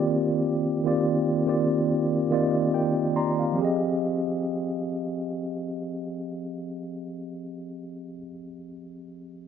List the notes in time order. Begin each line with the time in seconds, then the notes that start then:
Already playing: D#3 A#3 C4 F4 G4 D5
0.84 D#3 A#3 C4 F4 G4 D5
1.46 D#3 A#3 C4 F4 G4 D5
2.30 D#3 A#3 C4 F4 G4 D5 D#5
2.74 A#4 G5
3.16 D5 A#5 C6
3.39 F5
3.52 F3 C4
3.59 G4 G#4
3.65 D#5